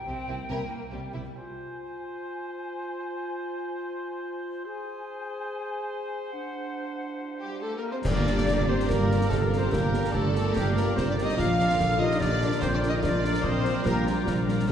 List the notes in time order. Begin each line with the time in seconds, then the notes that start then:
Already playing: G5
0.06 C2 C3 C4 G4
0.28 C2 C3 A#3 E4
0.49 C2 C3 A#3 E4 A#4
0.92 C2 C3 G3 C4 G4
1.12 C2 C3 A#3 E4
1.35 F4 C5 G#5
4.64 G#4 C5 G#5
6.33 D4 F#5
7.40 G3 G4
7.62 A3 A4
7.76 A#3 A#4
7.91 C4 C5
8.04 G1 G2 A#3 D4 A#4 D5, concert bass drum, snare, crash
8.26 G4 A4 A#4 D5 A#5, snare
8.38 snare
8.47 G1 G4, concert bass drum, snare
8.67 C4 G4 A#4 C5 D5 A#5
8.80 snare
8.87 G1 G3 A#3 A#4, concert bass drum, snare
9.08 G4 A#4 D5 A#5, snare
9.21 snare
9.29 G1 C3 A3 A4 F5, concert bass drum, snare
9.43 A#3 A#4
9.51 G4 A#4 D5 A#5, snare
9.57 C4 C5
9.71 G1 D3 A#3 G4 A#4 G5, concert bass drum, snare
9.91 G4 A#4 D5 A#5, snare
10.05 snare
10.12 G1 A3 A4 D5, concert bass drum
10.33 G4 A#4 D5 A#5, snare
10.54 G1 G3 A#3 G4 A#4 D5, concert bass drum, snare
10.75 A#3 G4 A#4 D5 A#5, snare
10.95 G1 G3 C4 C5, concert bass drum, snare
11.09 D4 D5
11.17 G4 A#4 D5 A#5, snare
11.23 D#4 D#5
11.29 snare
11.36 A#1 F3 F4 A#4 D5 F5 A#5, concert bass drum, snare
11.58 F4 A#4 D5 A#5, snare
11.70 snare
11.78 A#1 D3 A4 F5, concert bass drum, snare
11.99 D#4 F4 G4 A#4 D5 D#5 A#5
12.11 snare
12.19 A#1 D4 D5 F5, concert bass drum, snare
12.42 F4 A#4 D5 A#5, snare
12.52 snare
12.61 A#1 C4 F4 C5 G5, concert bass drum, snare
12.74 D4 D5
12.83 F4 A#4 D5 A#5, snare
12.89 D#5
12.94 D#4
13.02 A#1 D4 F4 D5 F5, concert bass drum, snare
13.24 F4 A#4 D5 A#5, snare
13.34 snare
13.42 A#1 F3 C4 A#4 C5 D#5, concert bass drum
13.64 F4 A#4 D5 A#5, snare
13.84 A#1 G3 A#3 G4 A#4 G5, concert bass drum, snare
14.07 F4 A#4 D5 A#5, snare
14.26 A#1 C5 F5, concert bass drum, snare
14.46 F4 A#4 D5 A#5, snare
14.60 snare
14.66 F1 F2 F3 C4 F4 G4 A4 C5 G5